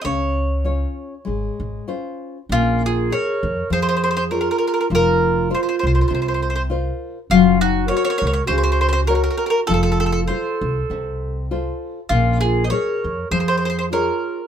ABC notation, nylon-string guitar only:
X:1
M:4/4
L:1/8
Q:"Swing" 1/4=100
K:Db
V:1 name="Nylon-string guitar"
D,2 [DFd]2 A,2 [DFc]2 | [K:Bbm] B,2 [ABd]2 F,2 [ABd]2 | F,2 [FBc]2 C,2 [FBc]2 | G,2 [GBd]2 D,2 [GBd]2 |
F,2 [F=Ac]2 C,2 [FAc]2 | B,2 [ABd]2 F,2 [ABd]2 |]